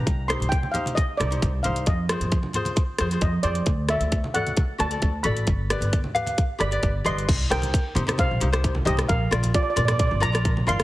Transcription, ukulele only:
\new Staff \with { instrumentName = "Ukulele" } { \time 4/4 \key c \minor \tempo 4 = 133 r8 <ees' g' c''>8 r8 <ees' g' c''>8 r8 <ees' g' c''>16 <ees' g' c''>8 r16 <ees' g' c''>8 | r8 <f' aes' c''>8 r8 <f' aes' c''>8 r8 <f' aes' c''>16 <f' aes' c''>8 r16 <f' aes' c''>8 | r8 <fis' a' d''>8 r8 <fis' a' d''>8 r8 <fis' a' d''>16 <fis' a' d''>8 r16 <fis' a' d''>8 | r8 <g' b' d''>8 r8 <g' b' f''>8 r8 <g' b' d''>16 <g' b' d''>8 r16 <g' b' d''>8 |
r8 <ees' g' c''>8 r8 <ees' g' c''>16 <ees' g' c''>8 r16 <ees' g' c''>16 <ees' g' c''>8 r16 <ees' g' c''>8 | r8 <f' bes' d''>8 r8 <f' bes' d''>16 <f' bes' d''>8 r16 <f' bes' d''>16 <f' bes' d''>8 r16 <f' bes' d''>8 | }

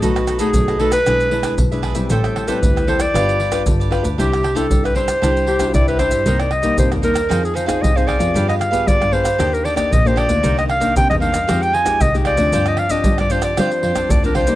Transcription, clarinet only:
\new Staff \with { instrumentName = "Clarinet" } { \time 4/4 \key c \major \tempo 4 = 115 fis'8. aes'8. a'16 b'4. r8. | a'8. b'8. c''16 d''4. r8. | g'8. a'8 b'16 c''4. d''16 b'16 c''8~ | \key c \minor c''16 d''16 ees''8 c''8 bes'8. aes'16 c''16 c''16 ees''16 c''16 d''8~ |
d''16 ees''16 f''8 d''8 c''8. bes'16 d''16 d''16 ees''16 c''16 d''8~ | d''16 ees''16 f''8 g''16 ees''16 f''8. g''16 aes''8 ees''16 r16 d''8~ | d''16 ees''16 f''16 ees''8 d''16 c''16 d''16 c''4 d''16 bes'16 c''8 | }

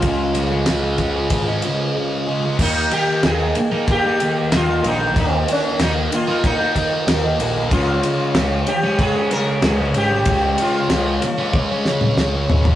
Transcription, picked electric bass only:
\new Staff \with { instrumentName = "Picked electric bass" } { \clef bass \time 4/4 \key ees \mixolydian \tempo 4 = 94 des,2 aes,,8 r4. | ees,8 r8 ees,8 r4. ees,8 bes,,8 | ees,8 r8 ees,8 r4. ees,8 bes,,8 | des,8 r8 des,8 r4. des,8 aes,,8 |
des,8 r8 des,8 r4. des,8 aes,,8 | }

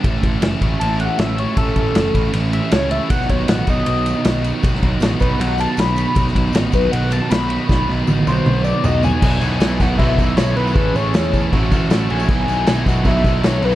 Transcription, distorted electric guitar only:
\new Staff \with { instrumentName = "Distorted electric guitar" } { \time 4/4 \key b \mixolydian \tempo 4 = 157 <a, e a cis' a'>2.~ <a, e a cis' a'>8 <a, e a cis' a'>8 | <a, e a cis' a'>2.~ <a, e a cis' a'>8 <a, e a cis' a'>8 | <b, fis b dis' fis'>2.~ <b, fis b dis' fis'>8 <b, fis b dis' fis'>8 | <b, fis b dis' fis'>2.~ <b, fis b dis' fis'>8 <b, fis b dis' fis'>8 |
<b, fis b dis' fis'>2.~ <b, fis b dis' fis'>8 <b, fis b dis' fis'>8 | <b, fis b dis' fis'>2.~ <b, fis b dis' fis'>8 <b, fis b dis' fis'>8 | <b, fis b dis' fis'>8 <b, fis b dis' fis'>8 <b, fis b dis' fis'>8 <b, fis b dis' fis'>8 <b, fis b dis' fis'>8 <b, fis b dis' fis'>8 <b, fis b dis' fis'>8 <b, fis b dis' fis'>8 | <a, e a cis' a'>8 <a, e a cis' a'>8 <a, e a cis' a'>8 <a, e a cis' a'>8 <a, e a cis' a'>8 <a, e a cis' a'>8 <a, e a cis' a'>8 <a, e a cis' a'>8 |
<b, fis b dis' fis'>8 <b, fis b dis' fis'>8 <fis b dis' fis'>8 <b, fis b dis' fis'>8 <b, fis b dis' fis'>8 <b, fis b dis' fis'>8 <b, fis b dis' fis'>8 <b, fis b dis' fis'>8 | }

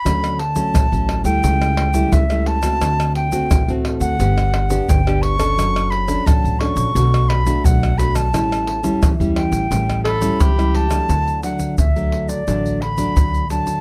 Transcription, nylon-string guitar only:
\new Staff \with { instrumentName = "Nylon-string guitar" } { \time 4/4 \key d \major \tempo 4 = 87 << { <fis a cis'>8 r16 <fis a cis'>8 <fis a cis'>8 <g a e'>4 <g a e'>8 <g a e'>8 <a c' fis'>16~ | <a c' fis'>8. <a c' fis'>8 <a c' fis'>8. <b d' g'>8 r16 <b d' g'>8 <b d' g'>8 <cis' d' a'>16~ | <cis' d' a'>8. <cis' d' a'>8. <cis' d' a'>8 <a d' fis'>8. <a d' fis'>8. <a d' fis'>8 | <g cis' e'>8. <g cis' e'>8 <g cis' e'>8. <g cis' e'>8. <g cis' e'>8 <g cis' e'>8 <fis a d'>16~ |
<fis a d'>8 <fis a d'>8 r16 <fis a d'>8. <fis a d'>8 r16 <fis a d'>8. <fis a d'>8 | } \\ { d4 a,4 cis4 cis4 | d4 a,4 g4 d4 | fis4 fis4 b,4 fis4 | a,4 e4 a,4 e4 |
d4 r4 d4 a,4 | } >> }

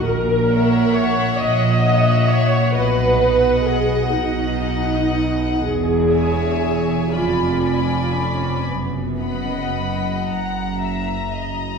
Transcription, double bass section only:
\new Staff \with { instrumentName = "Double bass section" } { \clef bass \time 6/8 \key b \major \tempo 4. = 40 ais,,4. ais,,4. | b,,4. b,,4. | e,,4. f,,4. | fis,,4. fis,,4. | }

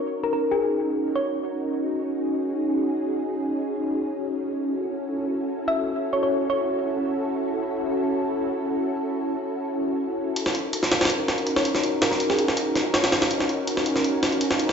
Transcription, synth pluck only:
\new Staff \with { instrumentName = "Synth pluck" } { \time 4/4 \key ees \minor \tempo 4 = 163 r8 bes'16 bes'16 r16 aes'8 r4 r16 des''4 | r1 | r1 | r2. r16 fes''8 r16 |
r8 des''16 des''16 r8 des''8. r4. r16 | r1 | r1 | r2. r16 des''8 r16 |
r8 bes'16 bes'16 r16 aes'8 r4 r16 des''4 | r1 | }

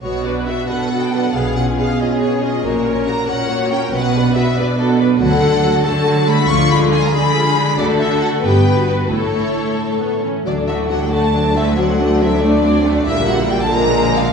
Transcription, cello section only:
\new Staff \with { instrumentName = "Cello section" } { \clef bass \time 6/8 \key b \minor \tempo 4. = 93 b,4. b,4. | b,4. b,4. | ais,4. ais,4. | b,4. b,4. |
\key d \major d4. d4. | d4. d4. | d4. g,4. | a,2~ a,8 r8 |
d,2.~ | d,2. | bes,2. | }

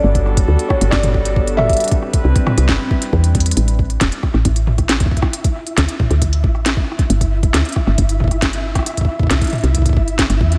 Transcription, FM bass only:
\new Staff \with { instrumentName = "FM bass" } { \clef bass \time 4/4 \key g \lydian \tempo 4 = 136 g,,4 d,16 r8 g,,16 g,,2 | r4 c,16 r8 c,16 g,,16 r8. e,4 | a,,4 e,,16 r8 a,,16 a,,4. r8 | r4 d,16 r8 d,8. a,,4 r8 |
g,,4 d,16 r8 g,,16 g,,2 | r4 c,16 r8 c,8. g,,8. g,,16 e,8 | }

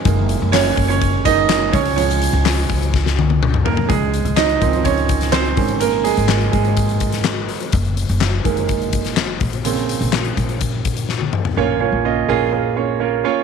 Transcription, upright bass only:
\new Staff \with { instrumentName = "Upright bass" } { \clef bass \time 4/4 \key des \major \tempo 4 = 125 ges,,8. ges,,8. ges,,2 des,8~ | des,8. des,8. des,2 r8 | des,8. des,8. des,2 aes,,8~ | aes,,8. aes,,8. aes,,2 r8 |
ges,,8. ges,,8. ges,,2 bes,,8~ | bes,,8. bes,,8. bes,,2 r8 | bes,,8. bes,,8. bes,,2 r8 | }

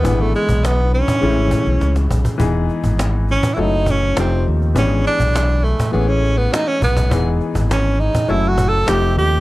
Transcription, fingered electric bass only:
\new Staff \with { instrumentName = "Fingered electric bass" } { \clef bass \time 4/4 \key e \major \tempo 4 = 102 gis,,8 r16 b,,4 r16 a,,16 gis,,16 r16 b,,16 cis,8 b,,16 r16 | e,,8 r16 gis,,4 r16 fis,,4 f,,8 ees,8 | gis,,8 r16 b,,4 r16 a,,4 r8 b,,8 | e,,8 r16 gis,,4 r16 fis,,4 f,,8 ees,8 | }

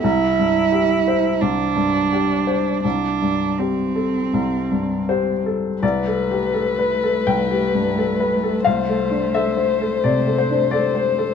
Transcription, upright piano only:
\new Staff \with { instrumentName = "Upright piano" } { \time 4/4 \key c \major \tempo 4 = 86 << { r1 | r2. c''4 | d''2 g''2 | f''4 e''4 d''8 c''8 d''4 | } \\ { c,8 g,8 g'8 c''8 c,8 g,8 g'8 c''8 | c,8 g,8 g'8 a'8 c,8 g,8 g'8 a'8 | \tuplet 3/2 { c,8 a'8 g'8 a'8 b'8 a'8 c,8 g'8 g,8 a'8 b'8 a'8 } | \tuplet 3/2 { c,8 a'8 d'8 a'8 c''8 a'8 c8 a'8 d'8 a'8 c''8 a'8 } | } >> }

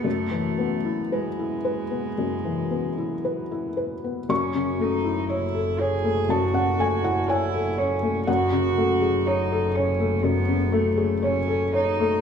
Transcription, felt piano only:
\new Staff \with { instrumentName = "Felt piano" } { \time 4/4 \key a \lydian \tempo 4 = 60 << { r1 | cis'''2 a''16 fis''16 gis''16 fis''16 gis''4 | fis''1 | } \\ { fis,16 e16 b16 e'16 b'16 e'16 b'16 b16 fis,16 e16 b16 e'16 b'16 e'16 b'16 b16 | fis,16 cis16 a16 e'16 cis''16 a'16 cis''16 a16 fis,16 cis16 a16 e'16 cis''16 a'16 cis''16 a16 | fis,16 cis16 a16 gis'16 cis''16 a'16 cis''16 a16 fis,16 cis16 a16 gis'16 cis''16 a'16 cis''16 a16 | } >> }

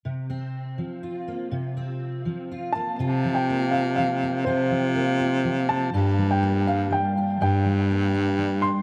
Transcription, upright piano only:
\new Staff \with { instrumentName = "Upright piano" } { \time 3/4 \key c \mixolydian \tempo 4 = 123 r2. | r2 r8 a''8~ | a''8. g''8. f''8 f''4 | c''4. r4 a''8~ |
a''8. g''8. f''8 g''4 | g''4. r4 c'''8 | }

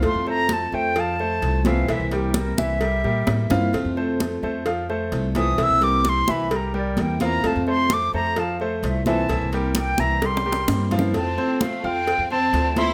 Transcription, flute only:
\new Staff \with { instrumentName = "Flute" } { \time 4/4 \key f \major \tempo 4 = 130 c'''8 bes''8 a''8 g''8 a''4. f''8 | e''8 g'8 bes'8 e''2~ e''8 | r2. r8 ees'''8 | e'''8 d'''8 c'''8 b''8 bes''8 d''8 g''8 bes''8 |
a''8 c'''8 d'''8 bes''8 a''8 c''8 e''8 a''8~ | a''8 r8 g''8 bes''8 c'''4. r8 | a''4 f''8 g''4 a''4 c'''8 | }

